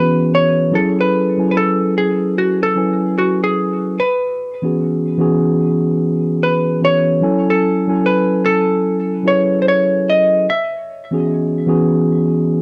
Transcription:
0.00 0.75 E3 medium
0.00 0.75 B3 medium
0.00 0.72 C#4 medium
0.00 0.75 F#4 medium
0.00 0.74 G#4 medium
0.00 0.34 B4 medium
0.00 0.61 B4 medium
0.35 0.75 C#5 medium
0.71 1.28 F#3 medium
0.71 1.28 C#4 medium
0.71 1.28 E4 medium
0.71 1.29 G#4 medium
0.71 1.29 A4 medium
0.71 0.98 A4 medium
1.00 1.50 B4 medium
1.38 2.60 F#3 medium
1.38 2.61 C#4 medium
1.38 2.61 E4 medium
1.38 2.62 B4 medium
1.38 2.61 G#5 medium
1.51 1.55 B4 medium
1.57 1.93 A4 medium
1.98 2.38 G#4 medium
2.38 2.60 F#4 medium
2.63 3.18 A4 medium
2.75 3.97 F#3 medium
2.75 3.97 C#4 medium
2.75 3.98 E4 medium
2.75 3.99 B4 medium
2.75 3.98 G#5 medium
3.18 3.43 F#4 medium
3.44 3.95 G#4 medium
4.00 6.42 B4 medium
4.62 5.12 E3 medium
4.62 5.13 B3 medium
4.62 5.13 C#4 medium
4.62 5.13 F#4 medium
4.62 5.14 G#4 medium
5.18 6.62 E3 medium
5.18 6.63 B3 medium
5.18 6.63 C#4 medium
5.18 6.64 F#4 medium
5.18 6.64 G#4 medium
6.43 6.80 B4 medium
6.81 7.18 E3 medium
6.81 7.18 B3 medium
6.81 7.18 C#4 medium
6.81 7.19 F#4 medium
6.81 7.19 B4 medium
6.81 7.50 C#5 medium
7.21 7.77 F#3 medium
7.21 7.77 C#4 medium
7.21 7.78 E4 medium
7.21 7.78 A4 loud
7.21 7.78 G#5 medium
7.50 8.06 A4 medium
7.87 9.09 F#3 medium
7.87 9.10 C#4 medium
7.87 9.10 E4 medium
7.87 9.11 A4 medium
7.87 9.11 G#5 medium
8.06 8.45 B4 medium
8.46 9.27 A4 medium
9.23 10.46 F#3 medium
9.23 10.46 C#4 medium
9.23 10.46 E4 medium
9.23 10.47 G#4 medium
9.23 10.47 B4 medium
9.28 9.62 C#5 medium
9.62 9.66 C5 medium
9.68 10.08 C#5 medium
10.10 10.45 D#5 loud
10.50 12.62 E5 medium
11.11 11.61 E3 medium
11.11 11.61 B3 medium
11.11 11.62 C#4 medium
11.11 11.62 F#4 medium
11.11 11.62 G#4 medium
11.66 12.62 E3 medium
11.66 12.62 B3 medium
11.66 12.62 C#4 medium
11.66 12.62 F#4 medium
11.66 12.62 G#4 medium

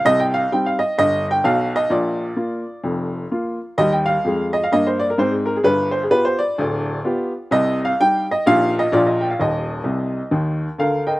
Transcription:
0.05 0.44 C2 medium
0.05 0.44 C3 medium
0.05 0.19 D#5 loud
0.20 0.32 G5 medium
0.34 0.49 F5 medium
0.52 0.77 G3 soft
0.52 0.78 C4 medium
0.52 0.78 D#4 soft
0.52 0.65 G5 medium
0.66 0.79 F5 medium
0.79 0.95 D#5 medium
0.98 1.38 G1 medium
0.98 1.38 G2 medium
0.98 1.25 D#5 loud
1.31 1.43 G5 medium
1.44 1.82 B1 medium
1.44 1.81 B2 medium
1.44 1.71 F5 medium
1.76 1.89 D#5 medium
1.90 2.30 A#1 medium
1.90 2.30 A#2 medium
1.90 3.10 D5 medium
2.36 2.62 A#3 soft
2.36 2.63 F4 soft
2.84 3.24 F1 medium
2.84 3.24 F2 medium
3.31 3.57 A#3 soft
3.31 3.57 F4 soft
3.78 4.15 D#2 medium
3.78 4.16 G3 medium
3.78 3.91 D#5 loud
3.92 4.06 G5 medium
4.06 4.45 F5 medium
4.25 4.62 F2 medium
4.25 4.63 G#3 medium
4.53 4.62 D#5 medium
4.64 4.72 F5 medium
4.72 5.09 G2 medium
4.72 5.10 A#3 medium
4.72 4.85 D#5 medium
4.87 4.99 C5 medium
5.00 5.09 D5 medium
5.10 5.19 A#4 medium
5.18 5.55 G#2 medium
5.18 5.57 C4 medium
5.18 5.32 C5 medium
5.31 5.45 G#4 soft
5.46 5.55 A#4 medium
5.56 5.65 G#4 medium
5.64 6.04 G1 medium
5.64 6.04 G2 medium
5.64 5.88 B4 loud
5.91 6.01 C5 medium
6.03 6.12 G#4 medium
6.10 6.36 B3 soft
6.10 6.36 F4 soft
6.10 6.37 G4 medium
6.10 6.25 B4 loud
6.25 6.38 C5 medium
6.39 7.18 D5 medium
6.58 6.98 D1 medium
6.58 6.98 D2 medium
7.05 7.30 B3 medium
7.05 7.30 F4 medium
7.05 7.31 G4 medium
7.51 7.91 C2 medium
7.51 7.91 C3 medium
7.51 7.78 D#5 loud
7.85 7.97 F5 medium
8.00 8.25 G3 soft
8.00 8.25 D#4 medium
8.00 8.26 G4 medium
8.00 8.26 G5 loud
8.31 8.44 D#5 medium
8.46 8.85 A#1 medium
8.46 8.85 A#2 medium
8.46 8.72 A#3 medium
8.46 8.72 D#4 medium
8.46 8.72 G4 soft
8.46 8.72 F5 loud
8.79 8.91 D#5 medium
8.92 9.31 A#1 medium
8.92 9.31 A#2 medium
8.92 9.18 A#3 soft
8.92 9.18 F4 soft
8.92 9.18 A#4 soft
8.92 9.06 D5 medium
9.07 9.19 D#5 medium
9.21 9.29 G5 medium
9.30 9.39 F5 medium
9.39 9.78 D#1 medium
9.39 9.79 D#2 medium
9.39 10.58 D#5 medium
9.84 10.19 C2 medium
9.84 10.20 C3 medium
10.31 10.66 D#2 medium
10.31 10.66 D#3 medium
10.78 11.13 D2 medium
10.78 11.13 D3 soft
10.78 11.04 A#4 medium
10.78 11.02 F5 medium
11.07 11.20 A#4 soft
11.07 11.20 D#5 soft
11.07 11.20 G5 medium

